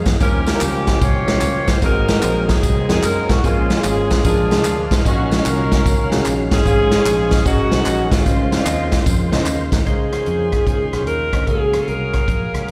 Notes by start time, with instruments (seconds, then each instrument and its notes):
Already playing: tonewheel organ F#3 A#3 G#4 F5
0.06 fingered electric bass E2, kick, snare, closed hi-hat, tambourine
0.20 fingered electric bass D#2, grand piano D#3 G3 C#4 F4 C5, tonewheel organ F3 A#3 C#4 G4, saxophone section C#4 G4 A#4, kick, closed hi-hat, tambourine
0.46 snare, closed hi-hat, tambourine
0.54 grand piano F#3 C#4 F4 A#4
0.59 fingered electric bass C#2, grand piano G3, saxophone section A#3 C#4 G4, clap, closed hi-hat, tambourine
0.87 kick, snare, closed hi-hat, tambourine
1.01 fingered electric bass C2, saxophone section F4 G4 C#5, kick, closed hi-hat, tambourine
1.27 fingered electric bass A#1, grand piano G3 C#4 F4 F#4, snare, closed hi-hat, tambourine
1.33 grand piano G4
1.41 fingered electric bass C#2, clap, closed hi-hat, tambourine
1.67 saxophone section C5, kick, snare, closed hi-hat, tambourine
1.82 fingered electric bass G#1, grand piano G#2 G#3 C4 F#4 A#4, tonewheel organ F#3 A#3 C4 G#4, saxophone section D#4 F#4 A#4, kick, closed hi-hat, tambourine
2.08 snare, closed hi-hat, tambourine
2.16 grand piano G#3 C4 F#4 B4
2.22 fingered electric bass A#1, grand piano C5, clap, closed hi-hat, tambourine
2.49 saxophone section C4 D#4 G#4, kick, snare, closed hi-hat, tambourine
2.63 fingered electric bass C2, kick, closed hi-hat, tambourine
2.89 fingered electric bass F2, grand piano G#3 C4 F#4 A#4, saxophone section G#4, snare, closed hi-hat, tambourine
3.03 fingered electric bass F#2, saxophone section A#4, clap, closed hi-hat, tambourine
3.29 fingered electric bass B1, saxophone section F#4, kick, snare, closed hi-hat, tambourine
3.43 fingered electric bass A#1, grand piano A#2 G#3 C#4 F4 A#4, tonewheel organ F3 A#3 C4 G#4, saxophone section G#3 C#4 F4, kick, closed hi-hat, tambourine
3.48 tonewheel organ C#4
3.70 snare, closed hi-hat, tambourine
3.77 grand piano G#3 C#4 F4 G#4
3.84 fingered electric bass G#1, saxophone section C#4 F4 G#4, clap, closed hi-hat, tambourine
4.11 kick, snare, closed hi-hat, tambourine
4.23 fingered electric bass A#1, grand piano A#2 G#3 D4 F4 A#4, tonewheel organ F3 A#3 D4 G#4, saxophone section D4 F4 G#4, kick, closed hi-hat, tambourine
4.50 fingered electric bass C2, grand piano G#3 D4 F4 G#4, snare, closed hi-hat, tambourine
4.65 fingered electric bass D2, clap, closed hi-hat, tambourine
4.91 fingered electric bass B1, kick, snare, closed hi-hat, tambourine
5.04 fingered electric bass A#1, grand piano A#2 C#4 F4 F#4 D#5, tonewheel organ D#3 F#3 C#4 F5, saxophone section C#4 D#4 F#4, kick, closed hi-hat, tambourine
5.31 snare, closed hi-hat, tambourine
5.38 grand piano C#4 F4 F#4 D#5
5.46 fingered electric bass C2, saxophone section C#4 F#4 A#4, clap, closed hi-hat, tambourine
5.72 kick, snare, closed hi-hat, tambourine
5.86 fingered electric bass C#2, kick, closed hi-hat, tambourine
6.12 fingered electric bass C2, grand piano C#4 F4 F#4 G#4, snare, closed hi-hat, tambourine
6.25 fingered electric bass A#1, clap, closed hi-hat, tambourine
6.51 fingered electric bass A1, saxophone section C#4 F4 G#4, kick, snare, closed hi-hat, tambourine
6.65 fingered electric bass G#1, grand piano G#2 C#4 F4 G#4 F5, tonewheel organ F3 G#3 C#4 G#4, kick, closed hi-hat, tambourine
6.91 snare, closed hi-hat, tambourine
6.98 grand piano C#4 F4 G#4 C#5
7.06 fingered electric bass A#1, clap, closed hi-hat, tambourine
7.31 kick, snare, closed hi-hat, tambourine
7.45 fingered electric bass G#1, grand piano G#2 C#4 F#4 G#4 D#5, tonewheel organ D#3 G#3 C#4 F#4, saxophone section C#4 D#4 F#4, kick, closed hi-hat, tambourine
7.72 fingered electric bass C2, grand piano C#4 F#4 G#4 C5, snare, closed hi-hat, tambourine
7.86 fingered electric bass A#1, clap, closed hi-hat, tambourine
8.11 fingered electric bass D2, saxophone section G#3 C4 F4, kick, snare, closed hi-hat, tambourine
8.24 fingered electric bass C#2, tonewheel organ C#3 D#3 F4 C5, grand piano C#3 C#4 F4 C5 D#5, kick, closed hi-hat, tambourine
8.52 snare, closed hi-hat, tambourine
8.59 grand piano C4 F4 C5 D5
8.65 fingered electric bass D#2, grand piano D#5, clap, closed hi-hat, tambourine
8.92 kick, snare, closed hi-hat, tambourine
9.06 fingered electric bass F2, kick, closed hi-hat, tambourine
9.32 fingered electric bass C#2, grand piano C#4 F4 C5 D#5, snare, closed hi-hat, tambourine
9.46 fingered electric bass D#2, clap, closed hi-hat, tambourine
9.72 fingered electric bass D2, kick, snare, closed hi-hat, tambourine
9.85 fingered electric bass C#2, grand piano C#3 C#4 F4 C5 D#5, tonewheel organ D#3 C#4 F4 C5, brass ensemble D#3 F3 C#4 C5, alto saxophone G#4, kick, closed hi-hat
10.13 cross-stick, closed hi-hat
10.26 fingered electric bass F2, closed hi-hat
10.52 fingered electric bass D#2, kick, cross-stick, closed hi-hat
10.67 fingered electric bass C#2, kick, closed hi-hat
10.93 fingered electric bass A#1, cross-stick, closed hi-hat
11.07 fingered electric bass D#2, alto saxophone A#4, closed hi-hat
11.33 fingered electric bass D2, grand piano C#4 F4 C5 D#5, kick, cross-stick, closed hi-hat
11.47 fingered electric bass C#2, grand piano C#3 A#3 F#4 G#4 F5, brass ensemble F#3 G#3 A#3 F5, tonewheel organ F#3 A3 G#4 F5, alto saxophone G#4, kick, closed hi-hat
11.52 tonewheel organ A#3
11.73 cross-stick, closed hi-hat
11.82 alto saxophone A4
11.88 fingered electric bass C2, alto saxophone A#4, closed hi-hat
12.14 kick, cross-stick, closed hi-hat
12.28 fingered electric bass A#1, kick, closed hi-hat
12.54 fingered electric bass C#2, cross-stick, closed hi-hat